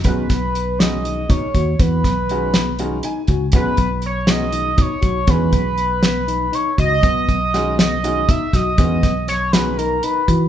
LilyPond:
<<
  \new Staff \with { instrumentName = "Analog synth lead" } { \time 7/8 \key b \major \tempo 4 = 120 b'4. dis''4 cis''4 | b'2. r8 | b'4 cis''8 dis''4 cis''4 | b'2~ b'8 cis''8 dis''8~ |
dis''4. dis''4 e''8 dis''8~ | dis''4 cis''8 b'8 ais'8 b'8. r16 | }
  \new Staff \with { instrumentName = "Tine electric piano" } { \time 7/8 \key b \major b4 r8 b8 dis'8 dis'8 fis'8 | b4 r8 b8 dis'8 dis'8 fis'8 | b4 r8 b8 dis'8 dis'8 fis'8 | b4 r8 b8 dis'8 dis'8 fis'8 |
b4 r8 b8 dis'8 dis'8 fis'8 | b4 r8 b8 dis'8 dis'8 fis'8 | }
  \new Staff \with { instrumentName = "Grand piano" } { \time 7/8 \key b \major <dis gis cis' fis'>8 r4 <dis gis cis' fis'>4. r8 | r4 <dis gis cis' fis'>8 r8 <dis gis cis' fis'>8 gis''4 | <dis gis cis' fis'>8 r4 <dis gis cis' fis'>8 r4. | <dis gis cis' fis'>8 r2. |
r4 <dis gis cis' fis'>8 r8 <dis gis cis' fis'>8 r4 | <dis gis cis' fis'>8 r4 <dis gis cis' fis'>8 r4. | }
  \new Staff \with { instrumentName = "Fingered electric bass" } { \clef bass \time 7/8 \key b \major b,,8 b,,2 b,16 r16 dis,8 | e,8 b,,2 r8 cis,8 | b,,8 b,,2 b,16 r16 b,,8 | e,8 b,,2 r8 cis,8 |
b,,8 b,,2 b,16 r16 b,,8 | e,8 b,,2 r8 e8 | }
  \new DrumStaff \with { instrumentName = "Drums" } \drummode { \time 7/8 <hh bd>8 <hh bd sn>8 hh8 <hh sn>8 hh8 <hh bd>8 <hh bd>8 | <hh bd>8 <hh bd sn>8 hh8 <hh sn>8 hh8 hh8 <hh bd>8 | <hh bd>8 <hh bd>8 hh8 <hh sn>8 hh8 <hh bd>8 <hh bd>8 | <hh bd>8 <hh bd>8 hh8 <hh sn>8 hh8 hh8 <hh bd>8 |
<hh bd>8 <hh bd>8 <hh sn>8 <hh sn>8 hh8 <hh bd>8 <hh bd sn>8 | <hh bd>8 <hh bd sn>8 <hh sn>8 <hh sn>8 hh8 hh8 <hh bd>8 | }
>>